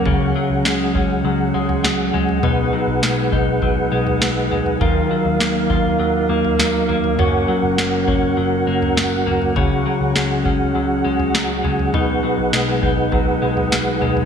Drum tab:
SD |----o-------o---|----o-------o---|----o-------o---|----o-------o---|
FT |o-----o----o--oo|o-----o-o--o--oo|o-----o----o--oo|o-----o----o--oo|
BD |o-----o---------|------o-o-------|o-----o---------|------o---------|

SD |----o-------o---|----o-------o---|
FT |o-----o----o--oo|o-----o-o--o--oo|
BD |o-----o---------|------o-o-------|